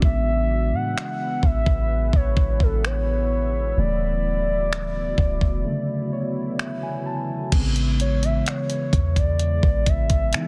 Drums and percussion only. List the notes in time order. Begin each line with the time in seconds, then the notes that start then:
0.02 kick
0.98 finger snap
1.43 kick
1.66 kick
2.13 kick
2.37 kick
2.60 kick
2.85 finger snap
4.73 finger snap
5.18 kick
5.41 kick
6.59 finger snap
7.52 kick, closed hi-hat, crash
7.76 closed hi-hat
8.00 closed hi-hat
8.23 closed hi-hat
8.46 finger snap, closed hi-hat
8.70 closed hi-hat
8.93 kick, closed hi-hat
9.16 kick, closed hi-hat
9.39 closed hi-hat
9.63 kick
9.86 kick, closed hi-hat
10.10 kick, closed hi-hat
10.33 finger snap, closed hi-hat